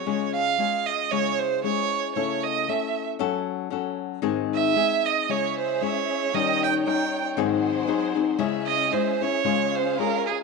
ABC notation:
X:1
M:2/4
L:1/16
Q:"Swing" 1/4=115
K:Db
V:1 name="Violin"
d2 f4 e2 | [K:C#m] c2 ^B2 c4 | c2 d2 e3 z | z8 |
z2 e4 d2 | c2 ^B2 c4 | d2 =g2 g3 z | z8 |
z2 d2 ^B2 c2- | [K:Db] ^c2 =c2 B2 A2 |]
V:2 name="Violin section"
z8 | [K:C#m] z8 | z8 | z8 |
z8 | [CGe]8 | [Dc=g]8 | [G,F^B]8 |
[CGe]8 | [K:Db] [DAf]8 |]
V:3 name="Nylon-string guitar"
[D,A,DFA]4 [A,DFA]4 | [K:C#m] [C,G,CEG]4 [G,CEG]4 | [C,A,CEA]4 [A,CEA]4 | [F,CFA]4 [F,CFA]4 |
[G,,D,G,^B,DG]4 [G,B,DG]4 | [C,G,CEG]4 [G,CEG]4 | [D,=G,CD^A]4 [G,CDA]4 | [G,,D,F,^B,DG]4 [F,B,DG]2 [F,B,DG]2 |
[C,G,CEG]4 [G,CEG]2 [CEG]2 | [K:Db] [D,A,DFA]4 [A,DFA]4 |]